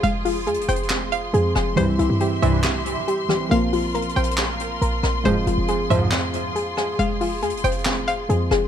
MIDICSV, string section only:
0, 0, Header, 1, 2, 480
1, 0, Start_track
1, 0, Key_signature, -4, "minor"
1, 0, Tempo, 434783
1, 36, Time_signature, 4, 2, 24, 8
1, 9582, End_track
2, 0, Start_track
2, 0, Title_t, "String section"
2, 0, Program_c, 0, 48
2, 0, Note_on_c, 0, 65, 77
2, 0, Note_on_c, 0, 68, 80
2, 0, Note_on_c, 0, 84, 91
2, 1918, Note_off_c, 0, 65, 0
2, 1918, Note_off_c, 0, 68, 0
2, 1957, Note_on_c, 0, 76, 77
2, 1958, Note_on_c, 0, 67, 81
2, 3858, Note_off_c, 0, 67, 0
2, 3858, Note_off_c, 0, 76, 0
2, 3876, Note_on_c, 0, 65, 73
2, 3876, Note_on_c, 0, 70, 79
2, 5777, Note_off_c, 0, 70, 0
2, 5798, Note_on_c, 0, 68, 79
2, 9582, Note_off_c, 0, 65, 0
2, 9582, Note_off_c, 0, 68, 0
2, 9582, Note_off_c, 0, 84, 0
2, 9582, End_track
0, 0, End_of_file